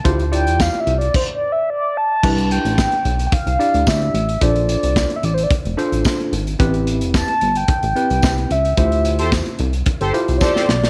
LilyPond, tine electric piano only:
\new Staff \with { instrumentName = "Tine electric piano" } { \time 4/4 \key c \major \tempo 4 = 110 <e' f' g' c''>8 <e' f' g' d''>4. r2 | <d' e' g' b'>4. r4 <d' e' g' d''>4 r8 | <d' f' a' c''>4. r4 <d' f' a' c''>4 r8 | <c' e' g' b'>4. r4 <c' e' g' b'>4 r8 |
<e' f' g' c''>4. r4 <e' f' g' c''>4 r8 | }